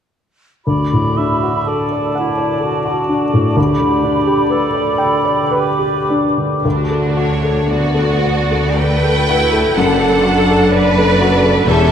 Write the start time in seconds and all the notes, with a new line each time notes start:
0.67 D2 F#4 D5 B5
0.93 A2
1.17 D4 E5
1.43 F#4
1.67 A4 D5 A5
1.92 D5
2.15 E4 F#5
2.38 D5
2.60 A4
2.65 F#4 A5
2.85 F#4
3.08 D4
3.34 A2
3.57 D2 G4 D5 B5
3.80 D3
4.04 D4
4.27 G4
4.50 A4 B4 B5
4.75 D5
4.98 G5
5.25 D5
5.51 B4
5.56 G4 B4 D6
5.79 G4
6.10 D4
6.38 D3
6.65 D2 A3 D4 F#4
6.90 A4
7.17 F#4 C#5
7.44 A4
7.67 B3 F#4 D5
7.94 A4
8.24 F#4
8.51 A4
8.78 A3 A4 B4 D5 G5
9.04 A4
9.29 E4 F#4
9.53 A4
9.76 F#1 F#2 D4 A4 F#5
10.00 A4
10.23 F#4
10.50 A4
10.72 B4 D5
10.98 A4
11.21 F#4 A4
11.45 A4
11.68 E1 E2 C#4 G4 A4 E5